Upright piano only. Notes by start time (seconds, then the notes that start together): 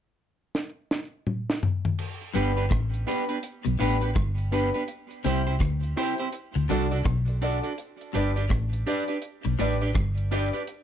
2.34 B3 D4 G4 B4
3.07 B3 D4 G4 B4
3.79 B3 D4 G4 B4
4.02 G4 B4
4.52 B3 D4 G4 B4
5.24 C4 E4 G4 C5
5.96 C4 E4 G4 C5
6.69 D4 F#4 A4 D5
6.91 A4 D5
7.28 A4 D5
7.41 D4 F#4 A4 D5
8.14 D4 G4 B4 D5
8.86 D4 G4 B4 D5
9.59 D4 G4 B4 D5
9.82 B4 D5
10.31 D4 G4 B4 D5